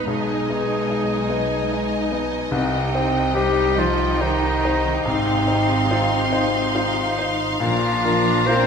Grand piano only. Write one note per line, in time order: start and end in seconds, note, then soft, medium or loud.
0.00 0.12 B3 soft
0.00 0.12 D#4 soft
0.00 0.12 D#5 soft
0.07 2.49 B1 medium
0.49 0.87 B3 soft
0.49 0.87 D#5 soft
0.90 1.27 D#4 soft
0.90 1.27 D#5 medium
1.30 1.67 B3 soft
1.30 1.67 D#5 medium
1.72 2.08 D#4 soft
1.72 2.09 D#5 soft
2.11 2.49 B3 soft
2.11 2.49 D#5 medium
2.51 5.02 C2 medium
2.95 3.33 D#4 soft
2.95 3.33 C5 medium
3.37 3.75 G4 medium
3.37 3.75 C5 medium
3.78 4.18 D#4 medium
3.78 4.18 C5 medium
4.21 4.60 G4 medium
4.21 4.61 C5 medium
4.65 5.03 D#4 medium
4.65 5.03 C5 medium
5.06 7.58 G#2 medium
5.48 5.87 D#4 medium
5.48 5.87 C5 medium
5.91 6.30 F4 medium
5.91 6.30 C5 medium
6.33 6.72 D#4 medium
6.33 6.72 C5 medium
6.75 7.15 F4 soft
6.75 7.15 C5 medium
7.18 7.58 D#4 medium
7.18 7.59 C5 medium
7.60 8.67 A#2 medium
8.05 8.44 D4 medium
8.05 8.44 A#4 medium
8.49 8.67 F4 medium
8.49 8.67 A#4 medium